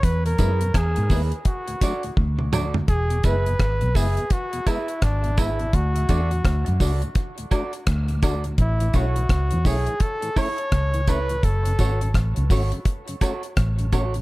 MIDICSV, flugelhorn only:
0, 0, Header, 1, 2, 480
1, 0, Start_track
1, 0, Tempo, 712589
1, 21, Time_signature, 4, 2, 24, 8
1, 9577, End_track
2, 0, Start_track
2, 0, Title_t, "Flugelhorn"
2, 0, Program_c, 0, 56
2, 27, Note_on_c, 0, 71, 93
2, 170, Note_off_c, 0, 71, 0
2, 173, Note_on_c, 0, 70, 91
2, 507, Note_on_c, 0, 68, 89
2, 518, Note_off_c, 0, 70, 0
2, 816, Note_off_c, 0, 68, 0
2, 986, Note_on_c, 0, 66, 75
2, 1437, Note_off_c, 0, 66, 0
2, 1947, Note_on_c, 0, 68, 99
2, 2190, Note_on_c, 0, 71, 101
2, 2201, Note_off_c, 0, 68, 0
2, 2669, Note_on_c, 0, 68, 94
2, 2679, Note_off_c, 0, 71, 0
2, 2911, Note_on_c, 0, 66, 88
2, 2921, Note_off_c, 0, 68, 0
2, 3151, Note_on_c, 0, 64, 87
2, 3161, Note_off_c, 0, 66, 0
2, 3391, Note_on_c, 0, 62, 78
2, 3401, Note_off_c, 0, 64, 0
2, 3632, Note_on_c, 0, 64, 86
2, 3642, Note_off_c, 0, 62, 0
2, 3871, Note_on_c, 0, 66, 94
2, 3881, Note_off_c, 0, 64, 0
2, 4586, Note_off_c, 0, 66, 0
2, 5795, Note_on_c, 0, 64, 87
2, 6035, Note_on_c, 0, 66, 87
2, 6045, Note_off_c, 0, 64, 0
2, 6511, Note_on_c, 0, 68, 90
2, 6522, Note_off_c, 0, 66, 0
2, 6749, Note_on_c, 0, 69, 98
2, 6759, Note_off_c, 0, 68, 0
2, 6991, Note_on_c, 0, 73, 111
2, 7001, Note_off_c, 0, 69, 0
2, 7471, Note_on_c, 0, 71, 101
2, 7481, Note_off_c, 0, 73, 0
2, 7708, Note_on_c, 0, 69, 95
2, 7718, Note_off_c, 0, 71, 0
2, 8184, Note_off_c, 0, 69, 0
2, 9577, End_track
0, 0, End_of_file